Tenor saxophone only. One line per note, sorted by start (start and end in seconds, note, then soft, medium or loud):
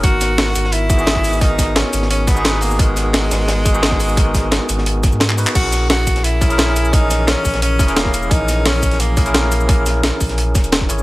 0.04 0.74 F#4 loud
0.73 1.43 E4 loud
1.42 1.77 D#4 loud
1.76 2.10 C#4 loud
2.11 2.29 C#4 loud
2.28 2.64 B3 loud
2.62 2.81 A#3 medium
2.80 5.21 G#3 loud
5.56 5.87 F#4 loud
5.90 6.26 F#4 loud
6.25 6.95 E4 loud
6.94 7.29 D#4 loud
7.28 7.62 C#4 medium
7.62 7.98 C#4 loud
7.96 8.33 A#3 loud
8.32 8.67 D#4 loud
8.66 9.02 C#4 loud
9.00 9.34 A#3 medium
9.35 10.00 A#3 medium